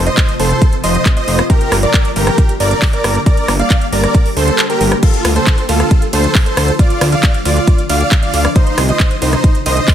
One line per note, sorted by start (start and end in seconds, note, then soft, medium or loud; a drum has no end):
0.06 0.33 C5 medium
0.06 0.33 D#5 medium
0.06 closed hi-hat medium
0.17 kick loud
0.17 clap loud
0.17 closed hi-hat medium
0.28 closed hi-hat soft
0.39 0.53 F1 loud
0.39 0.75 A4 medium
0.39 0.75 C5 loud
0.39 open hi-hat loud
0.51 closed hi-hat medium
0.62 kick loud
0.62 closed hi-hat medium
0.73 closed hi-hat soft
0.84 0.98 F1 medium
0.84 1.10 C5 medium
0.84 1.10 D#5 medium
0.84 open hi-hat loud
0.95 closed hi-hat medium
1.06 kick loud
1.06 clap loud
1.06 closed hi-hat medium
1.17 1.44 C5 medium
1.17 1.44 D#5 loud
1.17 1.44 D#5 medium
1.17 closed hi-hat medium
1.28 1.42 F1 medium
1.28 open hi-hat loud
1.39 cross-stick medium
1.39 closed hi-hat soft
1.50 1.77 G4 medium
1.50 1.77 A#4 medium
1.50 1.77 A#4 loud
1.50 kick loud
1.50 closed hi-hat medium
1.61 closed hi-hat medium
1.72 1.86 G1 loud
1.72 cross-stick medium
1.72 open hi-hat loud
1.83 2.10 A#4 medium
1.83 2.10 D5 loud
1.83 closed hi-hat medium
1.94 kick loud
1.94 clap loud
1.94 closed hi-hat medium
2.05 closed hi-hat medium
2.16 2.30 G1 loud
2.16 2.52 G4 medium
2.16 2.52 A#4 medium
2.16 open hi-hat loud
2.27 cross-stick medium
2.27 closed hi-hat medium
2.38 kick loud
2.38 closed hi-hat medium
2.49 closed hi-hat medium
2.60 2.74 G1 medium
2.60 2.87 A#4 medium
2.60 2.87 D5 medium
2.60 open hi-hat loud
2.71 closed hi-hat medium
2.82 kick loud
2.82 clap loud
2.82 open hi-hat medium
2.93 3.20 A#4 medium
2.93 3.20 D5 medium
2.93 3.20 D5 loud
2.93 closed hi-hat medium
3.04 3.18 G1 medium
3.04 cross-stick medium
3.04 open hi-hat loud
3.15 closed hi-hat medium
3.26 3.53 A#4 medium
3.26 3.53 D5 loud
3.26 kick loud
3.26 closed hi-hat medium
3.37 closed hi-hat medium
3.48 3.62 G1 loud
3.48 cross-stick medium
3.48 open hi-hat loud
3.59 3.86 D5 medium
3.59 3.86 F5 medium
3.59 3.86 F5 loud
3.59 closed hi-hat medium
3.70 kick loud
3.70 clap loud
3.70 closed hi-hat medium
3.81 closed hi-hat medium
3.92 4.06 G1 loud
3.92 4.28 A#4 medium
3.92 4.28 D5 loud
3.92 open hi-hat loud
4.04 cross-stick medium
4.04 closed hi-hat medium
4.15 kick loud
4.15 closed hi-hat medium
4.26 open hi-hat medium
4.37 4.50 D2 medium
4.37 4.63 A4 medium
4.37 4.63 C5 medium
4.37 open hi-hat loud
4.48 closed hi-hat medium
4.59 clap loud
4.59 closed hi-hat medium
4.70 4.97 G4 medium
4.70 4.96 A#4 medium
4.70 4.96 A#4 loud
4.70 closed hi-hat medium
4.81 4.95 G1 medium
4.81 open hi-hat loud
4.92 cross-stick medium
4.92 closed hi-hat soft
5.03 5.30 F4 medium
5.03 5.30 A4 loud
5.03 kick loud
5.03 closed hi-hat medium
5.03 crash medium
5.14 closed hi-hat medium
5.25 5.39 D2 loud
5.25 cross-stick medium
5.25 open hi-hat loud
5.25 ride medium
5.36 5.63 A4 medium
5.36 5.63 C5 loud
5.36 closed hi-hat medium
5.47 kick loud
5.47 clap loud
5.47 closed hi-hat medium
5.58 closed hi-hat medium
5.69 5.83 D2 loud
5.69 6.05 F4 medium
5.69 6.05 A4 medium
5.69 open hi-hat loud
5.69 ride medium
5.80 cross-stick medium
5.80 closed hi-hat medium
5.91 kick loud
5.91 closed hi-hat medium
6.02 closed hi-hat medium
6.13 6.27 D2 medium
6.13 6.40 A4 medium
6.13 6.40 C5 medium
6.13 open hi-hat loud
6.13 ride medium
6.24 closed hi-hat medium
6.35 kick loud
6.35 clap loud
6.35 open hi-hat medium
6.46 6.73 A4 medium
6.46 6.73 C5 loud
6.46 closed hi-hat medium
6.57 6.71 D2 loud
6.57 cross-stick medium
6.57 open hi-hat loud
6.57 ride medium
6.68 closed hi-hat medium
6.79 7.06 F4 medium
6.79 7.06 D5 medium
6.79 7.06 D5 loud
6.79 kick loud
6.79 closed hi-hat medium
6.90 closed hi-hat medium
7.01 7.15 D2 loud
7.01 cross-stick medium
7.01 open hi-hat loud
7.01 ride medium
7.12 7.39 D5 medium
7.12 7.39 F5 medium
7.12 closed hi-hat medium
7.23 kick loud
7.23 clap loud
7.23 closed hi-hat medium
7.34 closed hi-hat medium
7.45 7.59 D2 loud
7.45 7.81 F4 medium
7.45 7.81 D5 loud
7.45 7.81 D5 medium
7.45 open hi-hat loud
7.45 ride medium
7.56 closed hi-hat medium
7.67 kick loud
7.67 closed hi-hat medium
7.78 closed hi-hat medium
7.89 8.03 D2 medium
7.89 8.16 D5 medium
7.89 8.16 F5 medium
7.89 open hi-hat loud
7.89 ride medium
8.01 closed hi-hat medium
8.12 kick loud
8.12 clap loud
8.12 closed hi-hat medium
8.23 8.49 D5 medium
8.23 8.49 F5 loud
8.23 8.49 F5 medium
8.23 closed hi-hat medium
8.34 8.48 D2 medium
8.34 open hi-hat loud
8.34 ride medium
8.45 cross-stick medium
8.45 closed hi-hat medium
8.56 8.82 D#4 medium
8.56 8.83 C5 loud
8.56 kick loud
8.56 closed hi-hat medium
8.67 closed hi-hat medium
8.78 8.92 C2 loud
8.78 cross-stick medium
8.78 open hi-hat loud
8.78 ride medium
8.89 9.16 C5 medium
8.89 9.16 D#5 medium
8.89 9.16 D#5 loud
8.89 closed hi-hat medium
9.00 kick loud
9.00 clap loud
9.00 closed hi-hat medium
9.11 closed hi-hat medium
9.22 9.36 C2 loud
9.22 9.58 D#4 medium
9.22 9.58 C5 medium
9.22 open hi-hat loud
9.22 ride medium
9.33 cross-stick medium
9.33 closed hi-hat medium
9.44 kick loud
9.44 closed hi-hat medium
9.55 closed hi-hat medium
9.66 9.80 C2 medium
9.66 9.93 C5 medium
9.66 9.93 D#5 loud
9.66 open hi-hat loud
9.66 ride medium
9.77 closed hi-hat medium
9.88 kick loud
9.88 clap loud
9.88 open hi-hat medium